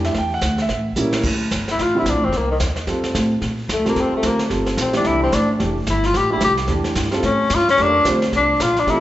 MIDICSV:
0, 0, Header, 1, 6, 480
1, 0, Start_track
1, 0, Key_signature, -1, "minor"
1, 0, Tempo, 272603
1, 259, Time_signature, 4, 2, 24, 8
1, 15849, End_track
2, 0, Start_track
2, 0, Title_t, "Grand piano"
2, 0, Program_c, 0, 0
2, 0, Note_on_c, 0, 52, 73
2, 0, Note_on_c, 0, 57, 66
2, 0, Note_on_c, 0, 62, 63
2, 0, Note_on_c, 0, 67, 77
2, 92, Note_on_c, 0, 76, 93
2, 224, Note_off_c, 0, 52, 0
2, 232, Note_off_c, 0, 57, 0
2, 235, Note_off_c, 0, 62, 0
2, 239, Note_off_c, 0, 67, 0
2, 265, Note_off_c, 0, 76, 0
2, 323, Note_on_c, 0, 79, 96
2, 572, Note_off_c, 0, 79, 0
2, 598, Note_on_c, 0, 78, 101
2, 1020, Note_off_c, 0, 78, 0
2, 1089, Note_on_c, 0, 76, 99
2, 1683, Note_off_c, 0, 76, 0
2, 1693, Note_on_c, 0, 55, 78
2, 1702, Note_on_c, 0, 58, 65
2, 1715, Note_on_c, 0, 61, 70
2, 1723, Note_on_c, 0, 64, 84
2, 2175, Note_off_c, 0, 55, 0
2, 2179, Note_off_c, 0, 58, 0
2, 2186, Note_off_c, 0, 61, 0
2, 2190, Note_off_c, 0, 64, 0
2, 3422, Note_on_c, 0, 50, 68
2, 3438, Note_on_c, 0, 55, 64
2, 3446, Note_on_c, 0, 60, 67
2, 3453, Note_on_c, 0, 64, 78
2, 3596, Note_off_c, 0, 50, 0
2, 3603, Note_off_c, 0, 55, 0
2, 3607, Note_off_c, 0, 60, 0
2, 3611, Note_off_c, 0, 64, 0
2, 5055, Note_on_c, 0, 55, 67
2, 5067, Note_on_c, 0, 60, 65
2, 5072, Note_on_c, 0, 65, 64
2, 5080, Note_on_c, 0, 69, 71
2, 5767, Note_off_c, 0, 55, 0
2, 5773, Note_off_c, 0, 60, 0
2, 5776, Note_off_c, 0, 65, 0
2, 5779, Note_off_c, 0, 69, 0
2, 6779, Note_on_c, 0, 55, 72
2, 6783, Note_on_c, 0, 60, 67
2, 6786, Note_on_c, 0, 65, 66
2, 6801, Note_on_c, 0, 69, 80
2, 7415, Note_off_c, 0, 55, 0
2, 7417, Note_off_c, 0, 60, 0
2, 7419, Note_off_c, 0, 65, 0
2, 7426, Note_off_c, 0, 69, 0
2, 7457, Note_on_c, 0, 55, 50
2, 7463, Note_on_c, 0, 65, 46
2, 7465, Note_on_c, 0, 60, 46
2, 7466, Note_on_c, 0, 72, 60
2, 7717, Note_off_c, 0, 55, 0
2, 7720, Note_off_c, 0, 65, 0
2, 7721, Note_off_c, 0, 60, 0
2, 7722, Note_off_c, 0, 72, 0
2, 7929, Note_on_c, 0, 55, 69
2, 7936, Note_on_c, 0, 60, 58
2, 7946, Note_on_c, 0, 69, 73
2, 7952, Note_on_c, 0, 65, 60
2, 8644, Note_off_c, 0, 55, 0
2, 8648, Note_off_c, 0, 60, 0
2, 8653, Note_off_c, 0, 69, 0
2, 8656, Note_off_c, 0, 65, 0
2, 8682, Note_on_c, 0, 57, 69
2, 8684, Note_on_c, 0, 52, 79
2, 8686, Note_on_c, 0, 62, 70
2, 8692, Note_on_c, 0, 67, 87
2, 9327, Note_off_c, 0, 57, 0
2, 9328, Note_off_c, 0, 52, 0
2, 9329, Note_off_c, 0, 62, 0
2, 9332, Note_off_c, 0, 67, 0
2, 9839, Note_on_c, 0, 52, 59
2, 9853, Note_on_c, 0, 57, 57
2, 9857, Note_on_c, 0, 62, 56
2, 9862, Note_on_c, 0, 67, 68
2, 10109, Note_off_c, 0, 52, 0
2, 10116, Note_off_c, 0, 57, 0
2, 10118, Note_off_c, 0, 62, 0
2, 10121, Note_off_c, 0, 67, 0
2, 11096, Note_on_c, 0, 52, 70
2, 11109, Note_on_c, 0, 57, 63
2, 11111, Note_on_c, 0, 62, 60
2, 11123, Note_on_c, 0, 67, 76
2, 11273, Note_off_c, 0, 52, 0
2, 11280, Note_off_c, 0, 57, 0
2, 11281, Note_off_c, 0, 62, 0
2, 11287, Note_off_c, 0, 67, 0
2, 11770, Note_on_c, 0, 52, 67
2, 11779, Note_on_c, 0, 57, 59
2, 11788, Note_on_c, 0, 62, 62
2, 11789, Note_on_c, 0, 67, 74
2, 12486, Note_off_c, 0, 52, 0
2, 12490, Note_off_c, 0, 57, 0
2, 12495, Note_off_c, 0, 62, 0
2, 12495, Note_off_c, 0, 67, 0
2, 12528, Note_on_c, 0, 55, 81
2, 12543, Note_on_c, 0, 60, 71
2, 12553, Note_on_c, 0, 65, 72
2, 12564, Note_on_c, 0, 69, 87
2, 12710, Note_off_c, 0, 55, 0
2, 12717, Note_off_c, 0, 60, 0
2, 12722, Note_off_c, 0, 65, 0
2, 12728, Note_off_c, 0, 69, 0
2, 13683, Note_on_c, 0, 62, 64
2, 13690, Note_on_c, 0, 57, 75
2, 13697, Note_on_c, 0, 67, 67
2, 13706, Note_on_c, 0, 70, 82
2, 13951, Note_off_c, 0, 62, 0
2, 13955, Note_off_c, 0, 57, 0
2, 13958, Note_off_c, 0, 67, 0
2, 13962, Note_off_c, 0, 70, 0
2, 14183, Note_on_c, 0, 55, 76
2, 14196, Note_on_c, 0, 65, 71
2, 14198, Note_on_c, 0, 60, 66
2, 14219, Note_on_c, 0, 72, 85
2, 14441, Note_off_c, 0, 55, 0
2, 14448, Note_off_c, 0, 60, 0
2, 14448, Note_off_c, 0, 65, 0
2, 14459, Note_off_c, 0, 72, 0
2, 15619, Note_on_c, 0, 55, 73
2, 15624, Note_on_c, 0, 60, 59
2, 15634, Note_on_c, 0, 65, 67
2, 15644, Note_on_c, 0, 69, 77
2, 15849, Note_off_c, 0, 55, 0
2, 15849, Note_off_c, 0, 60, 0
2, 15849, Note_off_c, 0, 65, 0
2, 15849, Note_off_c, 0, 69, 0
2, 15849, End_track
3, 0, Start_track
3, 0, Title_t, "Tenor saxophone"
3, 0, Program_c, 1, 66
3, 3012, Note_on_c, 1, 64, 82
3, 3188, Note_on_c, 1, 65, 100
3, 3215, Note_off_c, 1, 64, 0
3, 3451, Note_off_c, 1, 65, 0
3, 3503, Note_on_c, 1, 64, 76
3, 3694, Note_on_c, 1, 62, 78
3, 3721, Note_off_c, 1, 64, 0
3, 3954, Note_on_c, 1, 60, 77
3, 3980, Note_off_c, 1, 62, 0
3, 4165, Note_on_c, 1, 58, 76
3, 4191, Note_off_c, 1, 60, 0
3, 4406, Note_off_c, 1, 58, 0
3, 4416, Note_on_c, 1, 51, 72
3, 4521, Note_off_c, 1, 51, 0
3, 6561, Note_on_c, 1, 57, 75
3, 6800, Note_off_c, 1, 57, 0
3, 6853, Note_on_c, 1, 58, 81
3, 7045, Note_on_c, 1, 60, 92
3, 7072, Note_off_c, 1, 58, 0
3, 7300, Note_off_c, 1, 60, 0
3, 7325, Note_on_c, 1, 57, 78
3, 7522, Note_on_c, 1, 58, 75
3, 7549, Note_off_c, 1, 57, 0
3, 7779, Note_off_c, 1, 58, 0
3, 8465, Note_on_c, 1, 60, 76
3, 8712, Note_off_c, 1, 60, 0
3, 8744, Note_on_c, 1, 62, 85
3, 8922, Note_on_c, 1, 64, 93
3, 8949, Note_off_c, 1, 62, 0
3, 9199, Note_off_c, 1, 64, 0
3, 9211, Note_on_c, 1, 60, 86
3, 9402, Note_on_c, 1, 62, 84
3, 9428, Note_off_c, 1, 60, 0
3, 9679, Note_off_c, 1, 62, 0
3, 10380, Note_on_c, 1, 64, 86
3, 10659, Note_on_c, 1, 65, 87
3, 10686, Note_off_c, 1, 64, 0
3, 10856, Note_on_c, 1, 67, 96
3, 10883, Note_off_c, 1, 65, 0
3, 11123, Note_off_c, 1, 67, 0
3, 11133, Note_on_c, 1, 64, 65
3, 11299, Note_off_c, 1, 64, 0
3, 11342, Note_on_c, 1, 67, 83
3, 11502, Note_off_c, 1, 67, 0
3, 12773, Note_on_c, 1, 61, 82
3, 13281, Note_on_c, 1, 65, 96
3, 13307, Note_off_c, 1, 61, 0
3, 13539, Note_off_c, 1, 65, 0
3, 13558, Note_on_c, 1, 61, 94
3, 13765, Note_on_c, 1, 62, 97
3, 13792, Note_off_c, 1, 61, 0
3, 14212, Note_off_c, 1, 62, 0
3, 14719, Note_on_c, 1, 62, 89
3, 15171, Note_on_c, 1, 65, 97
3, 15198, Note_off_c, 1, 62, 0
3, 15481, Note_on_c, 1, 62, 98
3, 15508, Note_off_c, 1, 65, 0
3, 15677, Note_on_c, 1, 64, 98
3, 15703, Note_off_c, 1, 62, 0
3, 15849, Note_off_c, 1, 64, 0
3, 15849, End_track
4, 0, Start_track
4, 0, Title_t, "Upright bass"
4, 0, Program_c, 2, 32
4, 0, Note_on_c, 2, 41, 106
4, 241, Note_off_c, 2, 41, 0
4, 258, Note_on_c, 2, 40, 84
4, 723, Note_off_c, 2, 40, 0
4, 734, Note_on_c, 2, 38, 93
4, 1201, Note_off_c, 2, 38, 0
4, 1211, Note_on_c, 2, 33, 86
4, 1680, Note_off_c, 2, 33, 0
4, 1689, Note_on_c, 2, 34, 98
4, 2158, Note_off_c, 2, 34, 0
4, 2174, Note_on_c, 2, 38, 82
4, 2640, Note_off_c, 2, 38, 0
4, 2657, Note_on_c, 2, 31, 93
4, 3122, Note_off_c, 2, 31, 0
4, 3145, Note_on_c, 2, 33, 82
4, 3606, Note_off_c, 2, 33, 0
4, 3621, Note_on_c, 2, 34, 92
4, 3792, Note_off_c, 2, 34, 0
4, 3792, Note_on_c, 2, 33, 61
4, 3930, Note_off_c, 2, 33, 0
4, 3941, Note_on_c, 2, 29, 67
4, 4088, Note_off_c, 2, 29, 0
4, 4095, Note_on_c, 2, 36, 80
4, 4561, Note_off_c, 2, 36, 0
4, 4580, Note_on_c, 2, 39, 94
4, 5044, Note_off_c, 2, 39, 0
4, 5052, Note_on_c, 2, 41, 88
4, 5520, Note_off_c, 2, 41, 0
4, 5533, Note_on_c, 2, 45, 97
4, 6000, Note_off_c, 2, 45, 0
4, 6010, Note_on_c, 2, 46, 84
4, 6479, Note_off_c, 2, 46, 0
4, 6494, Note_on_c, 2, 41, 96
4, 6634, Note_off_c, 2, 41, 0
4, 6634, Note_on_c, 2, 38, 56
4, 6787, Note_off_c, 2, 38, 0
4, 6797, Note_on_c, 2, 34, 72
4, 6955, Note_off_c, 2, 34, 0
4, 6970, Note_on_c, 2, 40, 88
4, 7242, Note_off_c, 2, 40, 0
4, 7442, Note_on_c, 2, 38, 96
4, 7915, Note_off_c, 2, 38, 0
4, 7924, Note_on_c, 2, 31, 87
4, 8391, Note_off_c, 2, 31, 0
4, 8401, Note_on_c, 2, 34, 100
4, 8868, Note_off_c, 2, 34, 0
4, 8879, Note_on_c, 2, 36, 86
4, 9354, Note_off_c, 2, 36, 0
4, 9368, Note_on_c, 2, 33, 102
4, 9838, Note_off_c, 2, 33, 0
4, 9851, Note_on_c, 2, 29, 91
4, 10320, Note_off_c, 2, 29, 0
4, 10328, Note_on_c, 2, 31, 98
4, 10799, Note_off_c, 2, 31, 0
4, 10811, Note_on_c, 2, 33, 84
4, 11270, Note_off_c, 2, 33, 0
4, 11280, Note_on_c, 2, 36, 98
4, 11755, Note_off_c, 2, 36, 0
4, 11762, Note_on_c, 2, 40, 89
4, 12236, Note_off_c, 2, 40, 0
4, 12243, Note_on_c, 2, 43, 100
4, 12716, Note_off_c, 2, 43, 0
4, 12728, Note_on_c, 2, 45, 86
4, 13195, Note_off_c, 2, 45, 0
4, 13206, Note_on_c, 2, 43, 99
4, 13678, Note_off_c, 2, 43, 0
4, 13688, Note_on_c, 2, 41, 90
4, 14159, Note_off_c, 2, 41, 0
4, 14174, Note_on_c, 2, 38, 104
4, 14641, Note_off_c, 2, 38, 0
4, 14651, Note_on_c, 2, 36, 82
4, 15120, Note_off_c, 2, 36, 0
4, 15139, Note_on_c, 2, 34, 105
4, 15598, Note_off_c, 2, 34, 0
4, 15609, Note_on_c, 2, 33, 89
4, 15849, Note_off_c, 2, 33, 0
4, 15849, End_track
5, 0, Start_track
5, 0, Title_t, "Muted upright bass strokes"
5, 7249, Note_on_c, 9, 29, 38
5, 7425, Note_off_c, 9, 29, 0
5, 15849, End_track
6, 0, Start_track
6, 0, Title_t, "Drums"
6, 77, Note_on_c, 9, 38, 44
6, 251, Note_off_c, 9, 38, 0
6, 251, Note_on_c, 9, 25, 46
6, 251, Note_on_c, 9, 38, 48
6, 257, Note_on_c, 9, 36, 24
6, 427, Note_off_c, 9, 38, 0
6, 434, Note_off_c, 9, 36, 0
6, 728, Note_on_c, 9, 44, 66
6, 732, Note_on_c, 9, 38, 73
6, 735, Note_on_c, 9, 36, 19
6, 905, Note_off_c, 9, 44, 0
6, 908, Note_off_c, 9, 38, 0
6, 911, Note_off_c, 9, 36, 0
6, 1022, Note_on_c, 9, 38, 42
6, 1198, Note_off_c, 9, 38, 0
6, 1208, Note_off_c, 9, 25, 0
6, 1208, Note_on_c, 9, 25, 45
6, 1208, Note_on_c, 9, 38, 48
6, 1213, Note_on_c, 9, 36, 22
6, 1384, Note_off_c, 9, 38, 0
6, 1389, Note_off_c, 9, 36, 0
6, 1690, Note_on_c, 9, 44, 67
6, 1866, Note_off_c, 9, 44, 0
6, 1983, Note_on_c, 9, 38, 74
6, 2159, Note_off_c, 9, 38, 0
6, 2177, Note_on_c, 9, 36, 70
6, 2182, Note_off_c, 9, 25, 0
6, 2182, Note_on_c, 9, 25, 48
6, 2182, Note_on_c, 9, 38, 41
6, 2182, Note_on_c, 9, 49, 71
6, 2353, Note_off_c, 9, 36, 0
6, 2358, Note_off_c, 9, 38, 0
6, 2358, Note_off_c, 9, 49, 0
6, 2660, Note_on_c, 9, 44, 62
6, 2661, Note_on_c, 9, 36, 19
6, 2664, Note_on_c, 9, 38, 62
6, 2836, Note_off_c, 9, 44, 0
6, 2838, Note_off_c, 9, 36, 0
6, 2840, Note_off_c, 9, 38, 0
6, 2955, Note_on_c, 9, 38, 40
6, 3131, Note_off_c, 9, 38, 0
6, 3147, Note_on_c, 9, 36, 21
6, 3149, Note_off_c, 9, 25, 0
6, 3149, Note_on_c, 9, 25, 44
6, 3149, Note_on_c, 9, 38, 46
6, 3323, Note_off_c, 9, 36, 0
6, 3325, Note_off_c, 9, 38, 0
6, 3620, Note_on_c, 9, 44, 58
6, 3623, Note_on_c, 9, 36, 25
6, 3623, Note_on_c, 9, 38, 65
6, 3796, Note_off_c, 9, 44, 0
6, 3799, Note_off_c, 9, 36, 0
6, 3799, Note_off_c, 9, 38, 0
6, 4092, Note_off_c, 9, 25, 0
6, 4092, Note_on_c, 9, 25, 44
6, 4092, Note_on_c, 9, 38, 42
6, 4101, Note_on_c, 9, 36, 18
6, 4268, Note_off_c, 9, 38, 0
6, 4277, Note_off_c, 9, 36, 0
6, 4574, Note_on_c, 9, 44, 61
6, 4578, Note_on_c, 9, 38, 69
6, 4579, Note_on_c, 9, 36, 19
6, 4750, Note_off_c, 9, 44, 0
6, 4754, Note_off_c, 9, 38, 0
6, 4755, Note_off_c, 9, 36, 0
6, 4858, Note_on_c, 9, 38, 42
6, 5034, Note_off_c, 9, 38, 0
6, 5055, Note_off_c, 9, 25, 0
6, 5055, Note_on_c, 9, 25, 50
6, 5055, Note_on_c, 9, 38, 43
6, 5057, Note_on_c, 9, 36, 20
6, 5231, Note_off_c, 9, 38, 0
6, 5233, Note_off_c, 9, 36, 0
6, 5345, Note_on_c, 9, 38, 48
6, 5521, Note_off_c, 9, 38, 0
6, 5539, Note_on_c, 9, 44, 60
6, 5540, Note_on_c, 9, 36, 21
6, 5543, Note_on_c, 9, 38, 70
6, 5715, Note_off_c, 9, 44, 0
6, 5716, Note_off_c, 9, 36, 0
6, 5719, Note_off_c, 9, 38, 0
6, 6016, Note_off_c, 9, 25, 0
6, 6016, Note_on_c, 9, 25, 50
6, 6016, Note_on_c, 9, 36, 17
6, 6016, Note_on_c, 9, 38, 45
6, 6192, Note_off_c, 9, 36, 0
6, 6192, Note_off_c, 9, 38, 0
6, 6495, Note_on_c, 9, 36, 22
6, 6499, Note_on_c, 9, 44, 60
6, 6503, Note_on_c, 9, 38, 64
6, 6671, Note_off_c, 9, 36, 0
6, 6676, Note_off_c, 9, 44, 0
6, 6679, Note_off_c, 9, 38, 0
6, 6794, Note_on_c, 9, 38, 42
6, 6970, Note_off_c, 9, 38, 0
6, 6972, Note_off_c, 9, 25, 0
6, 6972, Note_on_c, 9, 25, 51
6, 6972, Note_on_c, 9, 36, 27
6, 6972, Note_on_c, 9, 38, 46
6, 7148, Note_off_c, 9, 36, 0
6, 7148, Note_off_c, 9, 38, 0
6, 7441, Note_on_c, 9, 44, 63
6, 7445, Note_on_c, 9, 38, 65
6, 7448, Note_on_c, 9, 36, 21
6, 7617, Note_off_c, 9, 44, 0
6, 7621, Note_off_c, 9, 38, 0
6, 7624, Note_off_c, 9, 36, 0
6, 7733, Note_on_c, 9, 38, 43
6, 7909, Note_off_c, 9, 38, 0
6, 7928, Note_on_c, 9, 36, 19
6, 7929, Note_off_c, 9, 25, 0
6, 7929, Note_on_c, 9, 25, 42
6, 7929, Note_on_c, 9, 38, 45
6, 8104, Note_off_c, 9, 36, 0
6, 8105, Note_off_c, 9, 38, 0
6, 8213, Note_on_c, 9, 38, 48
6, 8389, Note_off_c, 9, 38, 0
6, 8406, Note_on_c, 9, 44, 63
6, 8409, Note_on_c, 9, 36, 26
6, 8410, Note_on_c, 9, 38, 67
6, 8583, Note_off_c, 9, 44, 0
6, 8585, Note_off_c, 9, 36, 0
6, 8586, Note_off_c, 9, 38, 0
6, 8684, Note_on_c, 9, 38, 45
6, 8860, Note_off_c, 9, 38, 0
6, 8878, Note_off_c, 9, 25, 0
6, 8878, Note_on_c, 9, 25, 53
6, 8878, Note_on_c, 9, 38, 46
6, 8887, Note_on_c, 9, 36, 24
6, 9054, Note_off_c, 9, 38, 0
6, 9063, Note_off_c, 9, 36, 0
6, 9372, Note_on_c, 9, 44, 57
6, 9373, Note_on_c, 9, 36, 22
6, 9376, Note_on_c, 9, 38, 72
6, 9548, Note_off_c, 9, 44, 0
6, 9549, Note_off_c, 9, 36, 0
6, 9552, Note_off_c, 9, 38, 0
6, 9854, Note_on_c, 9, 36, 23
6, 9858, Note_off_c, 9, 25, 0
6, 9858, Note_on_c, 9, 25, 46
6, 9858, Note_on_c, 9, 38, 47
6, 10030, Note_off_c, 9, 36, 0
6, 10034, Note_off_c, 9, 38, 0
6, 10329, Note_on_c, 9, 44, 60
6, 10332, Note_on_c, 9, 36, 27
6, 10333, Note_on_c, 9, 38, 69
6, 10505, Note_off_c, 9, 44, 0
6, 10508, Note_off_c, 9, 36, 0
6, 10509, Note_off_c, 9, 38, 0
6, 10627, Note_on_c, 9, 38, 47
6, 10803, Note_off_c, 9, 38, 0
6, 10810, Note_off_c, 9, 25, 0
6, 10810, Note_on_c, 9, 25, 54
6, 10810, Note_on_c, 9, 36, 28
6, 10810, Note_on_c, 9, 38, 51
6, 10986, Note_off_c, 9, 36, 0
6, 10986, Note_off_c, 9, 38, 0
6, 11277, Note_on_c, 9, 44, 59
6, 11280, Note_on_c, 9, 38, 74
6, 11287, Note_on_c, 9, 36, 25
6, 11453, Note_off_c, 9, 44, 0
6, 11456, Note_off_c, 9, 38, 0
6, 11463, Note_off_c, 9, 36, 0
6, 11575, Note_on_c, 9, 38, 45
6, 11751, Note_off_c, 9, 38, 0
6, 11753, Note_off_c, 9, 25, 0
6, 11753, Note_on_c, 9, 25, 47
6, 11753, Note_on_c, 9, 38, 48
6, 11762, Note_on_c, 9, 36, 22
6, 11929, Note_off_c, 9, 38, 0
6, 11938, Note_off_c, 9, 36, 0
6, 12046, Note_on_c, 9, 38, 45
6, 12222, Note_off_c, 9, 38, 0
6, 12242, Note_on_c, 9, 44, 58
6, 12245, Note_on_c, 9, 38, 70
6, 12248, Note_on_c, 9, 36, 20
6, 12416, Note_off_c, 9, 38, 0
6, 12416, Note_on_c, 9, 38, 32
6, 12418, Note_off_c, 9, 44, 0
6, 12424, Note_off_c, 9, 36, 0
6, 12529, Note_off_c, 9, 38, 0
6, 12529, Note_on_c, 9, 38, 48
6, 12564, Note_off_c, 9, 38, 0
6, 12564, Note_on_c, 9, 38, 51
6, 12727, Note_off_c, 9, 25, 0
6, 12727, Note_off_c, 9, 38, 0
6, 12727, Note_on_c, 9, 25, 56
6, 12727, Note_on_c, 9, 38, 52
6, 12732, Note_on_c, 9, 36, 20
6, 12903, Note_off_c, 9, 38, 0
6, 12908, Note_off_c, 9, 36, 0
6, 13201, Note_on_c, 9, 44, 70
6, 13204, Note_on_c, 9, 38, 71
6, 13211, Note_on_c, 9, 36, 27
6, 13377, Note_off_c, 9, 44, 0
6, 13379, Note_off_c, 9, 38, 0
6, 13379, Note_on_c, 9, 38, 28
6, 13387, Note_off_c, 9, 36, 0
6, 13534, Note_off_c, 9, 38, 0
6, 13534, Note_on_c, 9, 38, 54
6, 13684, Note_off_c, 9, 25, 0
6, 13684, Note_off_c, 9, 38, 0
6, 13684, Note_on_c, 9, 25, 54
6, 13684, Note_on_c, 9, 38, 47
6, 13694, Note_on_c, 9, 36, 27
6, 13860, Note_off_c, 9, 38, 0
6, 13870, Note_off_c, 9, 36, 0
6, 14174, Note_on_c, 9, 44, 69
6, 14176, Note_on_c, 9, 36, 20
6, 14178, Note_on_c, 9, 38, 70
6, 14350, Note_off_c, 9, 44, 0
6, 14352, Note_off_c, 9, 36, 0
6, 14354, Note_off_c, 9, 38, 0
6, 14473, Note_on_c, 9, 38, 48
6, 14649, Note_off_c, 9, 38, 0
6, 14658, Note_on_c, 9, 36, 26
6, 14663, Note_off_c, 9, 25, 0
6, 14663, Note_on_c, 9, 25, 48
6, 14663, Note_on_c, 9, 38, 51
6, 14834, Note_off_c, 9, 36, 0
6, 14839, Note_off_c, 9, 38, 0
6, 15137, Note_on_c, 9, 36, 23
6, 15141, Note_on_c, 9, 44, 59
6, 15144, Note_on_c, 9, 38, 70
6, 15313, Note_off_c, 9, 36, 0
6, 15317, Note_off_c, 9, 44, 0
6, 15321, Note_off_c, 9, 38, 0
6, 15434, Note_on_c, 9, 38, 47
6, 15610, Note_off_c, 9, 38, 0
6, 15617, Note_on_c, 9, 36, 28
6, 15627, Note_off_c, 9, 25, 0
6, 15627, Note_on_c, 9, 25, 50
6, 15627, Note_on_c, 9, 38, 51
6, 15793, Note_off_c, 9, 36, 0
6, 15804, Note_off_c, 9, 38, 0
6, 15849, Note_off_c, 9, 25, 0
6, 15849, End_track
0, 0, End_of_file